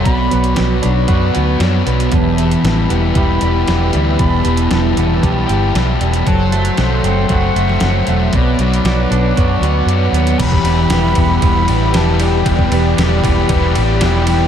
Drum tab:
CC |----------------|----------------|----------------|----------------|
RD |----------------|----------------|----------------|----------------|
HH |x-xxx-x-x-x-x-xx|x-xxx-x-x-x-x-x-|x-xxx-x-x-x-x-xx|x-xxx-x-x-x-x-x-|
SD |----o-------o---|----o-------o---|----o-------o---|----o------oo---|
BD |o-------o-------|o-------o-------|o-------o-------|o-------o-------|

CC |----------------|x---------------|----------------|
RD |----------------|x-x-x-x-x-x-x-x-|x-x-x-x-x-x-x-x-|
HH |x-xxx-x-x-x-x-xx|----------------|----------------|
SD |----o-----------|----o-------o---|----o-------o---|
BD |o-------o-------|oo----o-o-------|oo----o-o-------|